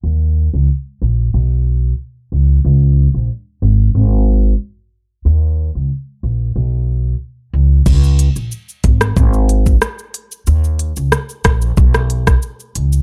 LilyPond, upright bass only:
\new Staff \with { instrumentName = "Upright bass" } { \clef bass \time 4/4 \key dis \phrygian \tempo 4 = 92 dis,8. cis,16 r8 ais,,8 b,,4 r8 cis,8 | cis,8. ais,,16 r8 gis,,8 gis,,4 r4 | dis,8. cis,16 r8 ais,,8 b,,4 r8 cis,8 | cis,8. ais,,16 r8 gis,,8 gis,,4 r4 |
dis,8. cis,16 r8 ais,,8 b,,4 r8 cis,8 | }